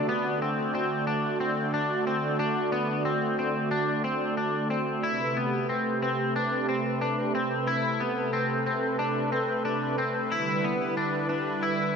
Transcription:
Already playing: analog synth pad D3 A3 F#4 D5
0.09 clean electric guitar B3
0.42 clean electric guitar C4
0.75 clean electric guitar C4
1.07 clean electric guitar D4
1.40 clean electric guitar C4
1.74 clean electric guitar D4
2.07 clean electric guitar C4
2.39 clean electric guitar D4
2.72 clean electric guitar B3
3.05 clean electric guitar C4
3.39 clean electric guitar C4
3.71 clean electric guitar D4
4.04 clean electric guitar C4
4.37 clean electric guitar D4
4.70 clean electric guitar C4
5.03 analog synth pad C3 G4 B4, clean electric guitar E4
5.37 clean electric guitar B3
5.69 clean electric guitar C4
6.02 clean electric guitar C4
6.36 clean electric guitar D4
6.69 clean electric guitar C4
7.01 clean electric guitar D4
7.35 clean electric guitar C4
7.67 clean electric guitar E4, analog synth pad A4
8.00 clean electric guitar B3
8.33 clean electric guitar C4
8.66 clean electric guitar C4
8.99 clean electric guitar D4
9.32 clean electric guitar C4
9.65 clean electric guitar D4
9.98 clean electric guitar C4
10.31 analog synth pad D3 G3 E4, clean electric guitar E4
10.64 clean electric guitar B3
10.97 clean electric guitar D4
11.29 clean electric guitar D4
11.63 clean electric guitar E4

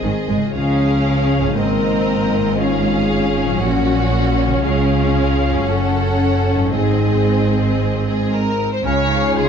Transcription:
Already playing: harp G#2 G#3 D#4 C5, french horn section D#3 C4, violin section G#4 D#5
0.03 double bass section G#1, cello section G#2, viola section D#3
0.28 double bass section G#1, cello section G#2, viola section G#3
0.37 harp C#3
0.41 harp G#3
0.46 harp F4
0.50 double bass section C#2, harp C#5
0.54 cello section C#3, french horn section F3 C#4, viola section C#4, violin section G#4 F5
1.39 harp G#2
1.44 harp A#3
1.48 harp D#4
1.52 french horn section A#3 C4, harp C5
1.57 double bass section G#1, cello section G#2, viola section C4, violin section A#4 D#5
2.42 harp G#2
2.46 harp G#3
2.51 harp F4
2.55 french horn section C#4 F4, harp C#5
2.59 viola section C#4, violin section G#4 F5
3.44 harp A#2
3.49 harp F#3
3.53 harp F#4
3.57 double bass section A#1, cello section A#2, french horn section F#4, harp C#5, violin section F#5
3.62 violin section F#4
4.47 harp C#3
4.51 harp G#3
4.55 harp F4
4.60 double bass section C#2, french horn section F4, violin section G#4, harp C#5
4.64 cello section C#3, violin section F5
5.50 harp F#2
5.55 harp A3
5.59 harp F#4
5.64 double bass section F#1, french horn section A4, harp C#5
5.68 cello section F#2, violin section A4 F#5
6.55 harp G#2
6.59 harp G#3
6.63 harp D#4
6.68 harp C5
6.72 double bass section G#1, cello section G#2, french horn section C4 G#4, viola section C4, violin section G#4 D#5
8.05 violin section G#4
8.32 violin section A#4
8.73 violin section C5
8.82 double bass section C#2, cello section C#3, harp C#3, french horn section G#3 F4, clarinet C#4, violin section C#5, oboe F5, flute section G#5
9.07 viola section C#4 G#4, clarinet D#4, violin section F5, harp F5
9.35 double bass section C#2, cello section C#3, harp F4, violin section G#4, oboe G#5, flute section C6

